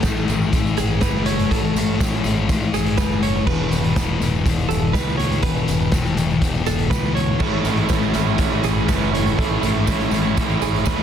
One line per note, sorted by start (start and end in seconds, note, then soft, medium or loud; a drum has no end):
0.00 0.25 A1 medium
0.00 0.54 A4 loud
0.00 kick loud
0.00 snare loud
0.00 closed hi-hat loud
0.05 0.54 A2 loud
0.05 0.31 E3 loud
0.05 0.29 A3 loud
0.05 tambourine loud
0.17 tambourine soft
0.28 0.50 A1 loud
0.28 0.54 E3 medium
0.28 0.55 A3 medium
0.28 closed hi-hat medium
0.28 tambourine medium
0.42 tambourine soft
0.53 0.75 A1 medium
0.53 0.79 A2 medium
0.53 0.79 E3 medium
0.53 0.77 A3 medium
0.53 kick loud
0.53 closed hi-hat loud
0.53 tambourine medium
0.66 tambourine soft
0.77 1.00 A1 medium
0.77 1.00 A2 medium
0.77 1.02 E3 medium
0.77 1.03 A3 loud
0.77 1.51 G#4 medium
0.77 closed hi-hat medium
0.77 tambourine medium
0.91 tambourine soft
1.01 1.45 F#1 medium
1.01 1.49 A2 medium
1.01 1.28 E3 medium
1.01 1.26 A3 medium
1.01 1.26 B4 medium
1.01 kick loud
1.01 snare loud
1.01 closed hi-hat loud
1.01 tambourine loud
1.15 snare soft
1.26 1.51 E3 medium
1.26 1.51 A3 medium
1.26 2.50 C#5 medium
1.26 closed hi-hat loud
1.26 tambourine soft
1.39 closed hi-hat soft
1.39 tambourine soft
1.50 1.73 A1 loud
1.50 1.98 A2 loud
1.50 1.77 E3 loud
1.50 1.74 A3 loud
1.50 2.00 A4 loud
1.50 kick loud
1.50 closed hi-hat loud
1.50 tambourine soft
1.75 1.97 A1 loud
1.75 2.00 E3 medium
1.75 2.00 A3 medium
1.75 closed hi-hat medium
1.75 tambourine medium
1.99 2.22 A1 medium
1.99 2.47 A2 loud
1.99 2.25 E3 loud
1.99 2.22 A3 loud
1.99 kick loud
1.99 snare loud
1.99 closed hi-hat loud
1.99 tambourine loud
2.12 closed hi-hat medium
2.12 tambourine soft
2.23 2.46 A1 loud
2.23 2.49 E3 medium
2.23 2.50 A3 medium
2.23 closed hi-hat medium
2.23 tambourine medium
2.36 tambourine soft
2.48 2.71 A1 loud
2.48 2.74 A2 medium
2.48 2.74 E3 medium
2.48 2.72 A3 medium
2.48 kick loud
2.48 closed hi-hat loud
2.48 tambourine medium
2.62 tambourine soft
2.73 2.95 A1 medium
2.73 2.98 A2 medium
2.73 2.99 E3 medium
2.73 2.99 A3 loud
2.73 4.46 G#4 medium
2.73 closed hi-hat medium
2.73 tambourine medium
2.86 closed hi-hat soft
2.86 tambourine soft
2.97 3.41 F#1 medium
2.97 3.46 A2 medium
2.97 3.24 E3 medium
2.97 3.21 A3 medium
2.97 3.22 B4 medium
2.97 kick loud
2.97 snare loud
2.97 closed hi-hat loud
2.97 tambourine medium
3.12 tambourine soft
3.23 3.49 E3 medium
3.23 3.46 A3 medium
3.23 3.46 C#5 medium
3.23 closed hi-hat medium
3.23 tambourine soft
3.36 tambourine soft
3.47 3.69 E1 loud
3.47 3.95 E2 loud
3.47 3.73 B2 loud
3.47 3.71 E3 loud
3.47 4.46 B4 loud
3.47 kick loud
3.47 tambourine soft
3.47 crash medium
3.70 3.93 E1 medium
3.70 3.96 B2 medium
3.70 3.97 E3 medium
3.70 closed hi-hat medium
3.70 tambourine medium
3.84 closed hi-hat soft
3.96 4.18 E1 loud
3.96 4.44 E2 medium
3.96 4.22 B2 medium
3.96 4.20 E3 loud
3.96 kick loud
3.96 snare loud
3.96 closed hi-hat loud
3.96 tambourine loud
4.20 4.43 E1 medium
4.20 4.45 B2 medium
4.20 4.46 E3 medium
4.20 closed hi-hat medium
4.20 tambourine medium
4.35 tambourine soft
4.45 4.67 E1 medium
4.45 4.70 E2 medium
4.45 4.69 B2 medium
4.45 4.70 E3 medium
4.45 kick loud
4.45 closed hi-hat loud
4.45 tambourine medium
4.59 tambourine soft
4.69 4.91 E1 medium
4.69 4.92 E2 medium
4.69 4.93 B2 medium
4.69 4.95 E3 loud
4.69 4.94 A4 medium
4.69 closed hi-hat medium
4.69 tambourine medium
4.93 5.37 C#2 medium
4.93 5.41 E2 medium
4.93 5.21 B2 medium
4.93 5.19 E3 medium
4.93 5.17 B4 medium
4.93 kick loud
4.93 snare loud
4.93 closed hi-hat loud
4.93 tambourine medium
5.08 snare soft
5.08 tambourine soft
5.17 5.44 E3 medium
5.17 5.42 C#5 medium
5.17 closed hi-hat medium
5.17 tambourine soft
5.22 5.43 B2 medium
5.32 closed hi-hat medium
5.32 tambourine soft
5.43 5.65 E1 loud
5.43 5.91 E2 medium
5.43 5.69 B2 loud
5.43 5.68 E3 loud
5.43 5.93 B4 loud
5.43 kick loud
5.43 closed hi-hat loud
5.43 tambourine soft
5.57 tambourine soft
5.68 5.90 E1 loud
5.68 5.92 B2 medium
5.68 5.94 E3 medium
5.68 closed hi-hat medium
5.68 tambourine medium
5.81 tambourine soft
5.92 6.14 E1 loud
5.92 6.40 E2 medium
5.92 6.19 B2 loud
5.92 6.17 E3 loud
5.92 kick loud
5.92 snare loud
5.92 closed hi-hat loud
5.92 tambourine loud
6.05 closed hi-hat soft
6.05 tambourine soft
6.17 6.39 E1 loud
6.17 6.42 B2 medium
6.17 6.43 E3 medium
6.17 closed hi-hat medium
6.17 tambourine medium
6.30 tambourine soft
6.41 6.63 E1 loud
6.41 6.67 E2 medium
6.41 6.66 B2 medium
6.41 6.66 E3 medium
6.41 kick loud
6.41 closed hi-hat loud
6.41 tambourine medium
6.55 tambourine soft
6.66 6.88 E1 medium
6.66 6.91 E2 medium
6.66 6.91 B2 medium
6.66 6.93 E3 medium
6.66 6.92 A4 medium
6.66 closed hi-hat medium
6.66 tambourine medium
6.79 closed hi-hat soft
6.79 tambourine soft
6.90 7.34 C#2 medium
6.90 7.40 E2 medium
6.90 7.18 B2 medium
6.90 7.17 E3 medium
6.90 7.14 B4 medium
6.90 kick loud
6.90 snare loud
6.90 closed hi-hat loud
6.90 tambourine medium
7.04 snare soft
7.04 tambourine soft
7.15 7.41 E3 medium
7.15 8.40 C#5 medium
7.15 closed hi-hat medium
7.15 tambourine soft
7.20 7.41 B2 medium
7.40 7.62 A1 loud
7.40 8.38 A2 medium
7.40 7.89 A2 medium
7.40 7.89 E3 loud
7.40 7.66 E3 loud
7.40 7.67 A3 medium
7.40 7.64 A3 loud
7.40 7.66 C#4 loud
7.40 7.65 E4 loud
7.40 8.40 A4 medium
7.40 kick loud
7.40 tambourine soft
7.40 crash medium
7.65 7.87 A1 loud
7.65 7.91 E3 medium
7.65 7.91 A3 medium
7.65 7.90 A3 medium
7.65 7.91 C#4 medium
7.65 7.91 E4 medium
7.65 closed hi-hat medium
7.65 tambourine medium
7.77 closed hi-hat soft
7.89 8.12 A1 medium
7.89 8.38 A2 medium
7.89 8.39 E3 medium
7.89 8.16 E3 loud
7.89 8.15 A3 medium
7.89 8.14 A3 loud
7.89 8.14 C#4 medium
7.89 8.13 E4 medium
7.89 kick loud
7.89 snare loud
7.89 closed hi-hat loud
7.89 tambourine medium
8.03 tambourine soft
8.13 8.37 A1 loud
8.13 8.39 E3 medium
8.13 8.40 A3 medium
8.13 8.38 A3 medium
8.13 8.40 C#4 medium
8.13 8.40 E4 medium
8.13 closed hi-hat medium
8.13 tambourine medium
8.27 tambourine soft
8.38 8.61 A1 loud
8.38 9.13 A2 loud
8.38 8.65 A2 medium
8.38 8.87 E3 loud
8.38 8.65 E3 medium
8.38 8.87 A3 loud
8.38 8.63 A3 medium
8.38 8.89 C#4 loud
8.38 8.89 E4 medium
8.38 kick loud
8.38 closed hi-hat loud
8.38 tambourine medium
8.53 tambourine soft
8.63 8.85 A1 medium
8.63 8.89 A2 medium
8.63 8.90 E3 medium
8.63 8.90 A3 medium
8.63 9.38 G#4 medium
8.63 closed hi-hat medium
8.63 tambourine medium
8.78 tambourine soft
8.88 9.32 F#1 medium
8.88 9.39 A2 medium
8.88 9.37 E3 medium
8.88 9.16 E3 medium
8.88 9.13 A3 medium
8.88 9.13 C#4 medium
8.88 9.12 E4 medium
8.88 9.13 B4 medium
8.88 kick loud
8.88 snare loud
8.88 closed hi-hat loud
8.88 tambourine loud
9.02 snare soft
9.02 tambourine soft
9.12 9.41 E3 medium
9.12 9.37 A3 medium
9.12 9.41 A3 medium
9.12 9.38 C#4 medium
9.12 9.39 E4 medium
9.12 10.38 C#5 medium
9.12 closed hi-hat medium
9.12 tambourine soft
9.26 closed hi-hat medium
9.26 tambourine soft
9.37 9.60 A1 loud
9.37 9.87 A2 loud
9.37 9.86 A2 loud
9.37 9.86 E3 loud
9.37 9.62 A3 loud
9.37 9.62 C#4 loud
9.37 9.60 E4 loud
9.37 9.88 A4 loud
9.37 kick loud
9.37 closed hi-hat loud
9.37 tambourine soft
9.41 9.66 E3 medium
9.41 9.64 A3 loud
9.61 9.84 A1 loud
9.61 9.86 A3 medium
9.61 9.88 C#4 medium
9.61 9.88 E4 medium
9.61 closed hi-hat medium
9.61 tambourine medium
9.65 9.89 E3 medium
9.65 9.89 A3 medium
9.87 10.09 A1 medium
9.87 10.37 A2 loud
9.87 10.36 E3 medium
9.87 10.13 E3 loud
9.87 10.12 A3 medium
9.87 10.10 A3 loud
9.87 10.13 C#4 medium
9.87 10.12 E4 medium
9.87 kick loud
9.87 snare loud
9.87 closed hi-hat loud
9.87 tambourine loud
10.00 closed hi-hat medium
10.00 tambourine soft
10.11 10.33 A1 loud
10.11 10.38 E3 medium
10.11 10.38 A3 medium
10.11 10.35 A3 medium
10.11 10.36 C#4 medium
10.11 10.37 E4 medium
10.11 closed hi-hat medium
10.11 tambourine medium
10.24 tambourine soft
10.36 10.59 A1 loud
10.36 11.03 A2 medium
10.36 10.62 A2 medium
10.36 10.84 E3 medium
10.36 10.62 E3 loud
10.36 10.84 A3 loud
10.36 10.60 A3 loud
10.36 10.85 C#4 loud
10.36 10.86 E4 loud
10.36 kick loud
10.36 closed hi-hat loud
10.36 tambourine medium
10.49 tambourine soft
10.61 10.83 A1 medium
10.61 10.86 A2 medium
10.61 10.88 E3 medium
10.61 10.88 A3 loud
10.61 11.03 G#4 medium
10.61 closed hi-hat medium
10.61 tambourine medium
10.74 closed hi-hat soft
10.74 tambourine soft
10.84 11.03 D#2 medium
10.84 11.03 A2 medium
10.84 11.03 E3 medium
10.84 11.03 A3 medium
10.84 11.03 C#4 loud
10.84 11.03 E4 loud
10.84 11.03 B4 medium
10.84 kick loud
10.84 snare loud
10.84 closed hi-hat loud
10.84 tambourine loud
10.89 11.03 A3 medium
10.98 tambourine soft